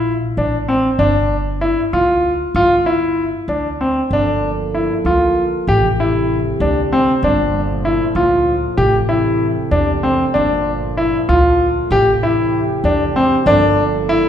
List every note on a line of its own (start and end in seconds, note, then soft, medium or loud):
0.00 0.19 A#1 medium
0.00 0.11 E4 medium
0.37 0.87 A1 medium
0.37 0.55 D4 medium
0.68 0.86 C4 medium
0.99 1.74 G1 medium
0.99 1.35 D4 medium
1.61 1.79 E4 medium
1.93 2.43 D2 medium
1.93 2.29 F4 medium
2.55 3.30 G1 medium
2.55 2.73 F4 medium
2.86 3.22 E4 medium
3.48 3.99 D2 medium
3.48 3.67 D4 medium
3.81 3.99 C4 medium
4.11 4.87 G1 medium
4.11 5.67 F3 medium
4.11 5.66 A#3 medium
4.11 4.48 D4 medium
4.11 5.67 A4 medium
4.75 4.92 E4 medium
5.05 5.55 D2 medium
5.05 5.41 F4 medium
5.67 6.43 A1 medium
5.67 7.22 C3 medium
5.67 7.22 A3 medium
5.67 5.86 G4 medium
5.67 7.22 G4 medium
6.00 6.35 E4 medium
6.60 7.10 D2 medium
6.60 6.79 D4 medium
6.92 7.10 C4 medium
7.23 7.98 G1 medium
7.23 8.77 A#2 medium
7.23 8.77 F3 medium
7.23 13.43 A3 medium
7.23 7.59 D4 medium
7.85 8.03 E4 medium
8.15 8.65 D2 medium
8.15 8.51 F4 medium
8.77 9.53 A1 medium
8.77 10.34 C3 medium
8.77 8.95 G4 medium
8.77 10.34 G4 medium
9.09 9.45 E4 medium
9.71 10.22 E2 medium
9.71 9.90 D4 medium
10.03 10.21 C4 medium
10.34 11.11 G1 medium
10.34 11.91 A#2 medium
10.34 11.91 F3 medium
10.34 10.70 D4 medium
10.97 11.16 E4 medium
11.29 11.79 D2 medium
11.29 11.65 F4 medium
11.91 12.66 A1 medium
11.91 13.46 C3 medium
11.91 12.10 G4 medium
11.91 13.46 G4 medium
12.23 12.58 E4 medium
12.84 13.34 E2 medium
12.84 13.03 D4 medium
13.16 13.34 C4 medium
13.45 14.21 G1 medium
13.45 14.29 F3 medium
13.45 14.29 A#3 medium
13.45 13.82 D4 loud
13.45 14.29 A4 medium
14.09 14.27 E4 medium